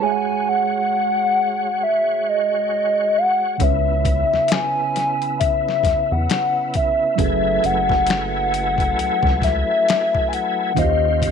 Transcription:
0.00 3.55 G#3 medium
0.00 3.57 G#3 medium
0.00 3.57 F#4 medium
0.00 3.56 G#4 medium
0.00 3.57 C#5 medium
0.00 0.50 G#5 loud
0.06 0.11 E5 medium
0.11 3.61 F#5 medium
0.49 1.85 F#5 loud
1.83 2.27 E5 medium
2.29 3.19 D#5 loud
3.18 3.65 F#5 loud
3.58 4.24 C#2 loud
3.58 7.13 C#3 medium
3.58 7.15 C#3 medium
3.58 7.15 B3 medium
3.58 7.14 C#4 medium
3.58 10.73 E4 medium
3.58 7.15 B4 medium
3.58 kick medium
3.58 closed hi-hat medium
3.62 7.15 C#5 medium
3.62 4.53 E5 loud
3.62 7.16 E5 medium
4.05 kick medium
4.05 closed hi-hat medium
4.33 4.40 E2 soft
4.33 snare soft
4.48 5.39 G#5 loud
4.48 snare loud
4.48 closed hi-hat medium
4.53 finger snap medium
4.96 snare soft
4.96 closed hi-hat medium
5.22 closed hi-hat soft
5.40 6.13 E5 loud
5.40 kick medium
5.40 closed hi-hat medium
5.69 snare soft
5.83 5.95 E2 medium
5.83 kick medium
5.83 snare soft
5.83 closed hi-hat medium
6.12 6.28 E2 medium
6.12 6.75 F#5 loud
6.30 finger snap medium
6.30 snare loud
6.30 closed hi-hat medium
6.74 7.17 E5 medium
6.74 kick medium
6.74 closed hi-hat medium
7.16 7.59 F#1 loud
7.16 10.71 F#3 medium
7.16 10.73 F#3 medium
7.16 10.73 A3 medium
7.16 10.72 C#4 medium
7.16 10.73 G#4 medium
7.16 10.73 A4 medium
7.16 10.73 B4 medium
7.16 10.73 G#5 medium
7.16 kick loud
7.16 closed hi-hat medium
7.20 10.74 B4 medium
7.20 7.67 E5 loud
7.20 10.74 E5 medium
7.64 8.94 F#1 medium
7.64 9.45 F#5 loud
7.64 closed hi-hat medium
7.89 kick medium
7.89 snare soft
8.07 snare loud
8.07 closed hi-hat medium
8.11 finger snap loud
8.54 closed hi-hat medium
8.78 kick medium
8.78 closed hi-hat medium
8.99 9.10 C#2 medium
8.99 closed hi-hat medium
9.23 9.64 C#2 loud
9.23 kick loud
9.27 snare soft
9.42 10.30 E5 loud
9.42 kick medium
9.42 snare soft
9.42 closed hi-hat medium
9.89 finger snap medium
9.89 snare loud
9.89 closed hi-hat medium
10.15 kick medium
10.29 10.35 G#5 medium
10.33 10.78 F#5 medium
10.33 closed hi-hat medium
10.74 11.31 D#2 loud
10.74 11.31 D#3 medium
10.74 11.31 C#4 medium
10.74 11.31 F4 medium
10.74 10.84 F4 medium
10.74 11.31 G4 medium
10.74 11.31 C5 medium
10.74 kick loud
10.74 closed hi-hat medium
10.79 11.31 D#5 medium
10.79 11.31 F5 medium
10.84 11.31 G4 medium
11.22 kick medium
11.22 closed hi-hat medium

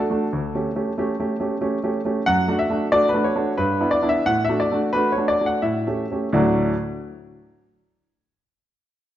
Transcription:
0.00 1.90 A4 medium
0.10 0.26 A3 soft
0.10 0.27 D4 soft
0.10 0.27 F#4 soft
0.33 0.54 D2 medium
0.55 0.70 A3 soft
0.55 0.71 C#4 soft
0.55 0.71 G4 soft
0.76 0.91 A3 soft
0.76 0.92 C#4 soft
0.76 0.92 G4 soft
0.98 1.13 A3 soft
0.98 1.14 C#4 soft
0.98 1.14 G4 medium
1.20 1.35 A3 soft
1.20 1.36 C#4 soft
1.20 1.35 G4 soft
1.40 1.56 A3 soft
1.40 1.56 C#4 soft
1.40 1.57 G4 soft
1.61 1.77 A3 soft
1.61 1.78 C#4 soft
1.61 1.78 G4 soft
1.84 1.99 A3 soft
1.84 1.99 C#4 soft
1.84 2.00 G4 soft
2.05 2.21 A3 soft
2.05 2.21 C#4 soft
2.05 2.22 G4 soft
2.26 2.48 F#2 medium
2.26 2.56 F#5 medium
2.48 2.64 A3 soft
2.48 2.64 D4 soft
2.48 2.65 F#4 soft
2.59 2.92 E5 medium
2.70 2.86 A3 soft
2.70 2.86 D4 soft
2.70 2.86 F#4 soft
2.92 3.08 A3 soft
2.92 3.08 D4 soft
2.92 3.09 F#4 medium
2.92 3.09 D5 medium
3.09 3.26 B4 medium
3.14 3.30 A3 soft
3.14 3.30 D4 soft
3.14 3.31 F#4 soft
3.24 3.55 C#5 medium
3.36 3.52 A3 soft
3.36 3.52 D4 soft
3.36 3.53 F#4 soft
3.58 3.80 G2 medium
3.58 3.88 B4 medium
3.80 3.97 B3 soft
3.80 3.97 D4 soft
3.80 3.97 E4 soft
3.91 4.09 D5 medium
4.02 4.19 B3 soft
4.02 4.19 D4 soft
4.02 4.19 E4 soft
4.09 4.26 E5 medium
4.26 4.48 A2 medium
4.26 4.43 F#5 medium
4.45 4.61 E5 medium
4.49 4.65 A3 soft
4.49 4.66 D4 soft
4.49 4.66 F#4 soft
4.60 4.80 D5 medium
4.72 4.88 A3 soft
4.72 4.88 D4 soft
4.72 4.89 F#4 soft
4.93 5.10 A3 soft
4.93 5.11 D4 soft
4.93 5.11 F#4 soft
4.93 5.11 B4 medium
5.12 5.29 C#5 medium
5.17 5.34 A3 soft
5.17 5.34 D4 soft
5.17 5.35 F#4 soft
5.28 5.46 D5 medium
5.40 5.57 A3 soft
5.40 5.57 D4 soft
5.40 5.58 F#4 soft
5.46 5.64 F#5 medium
5.62 5.86 A2 medium
5.62 6.34 E5 medium
5.87 6.04 A3 soft
5.87 6.05 C#4 soft
5.87 6.05 G4 soft
6.11 6.28 A3 soft
6.11 6.28 C#4 soft
6.11 6.29 G4 soft
6.33 6.72 D2 medium
6.33 6.72 A2 medium
6.33 6.73 F#3 medium
6.33 6.73 A3 medium
6.33 6.73 D4 medium
6.33 6.73 F#4 medium
6.33 6.73 D5 medium

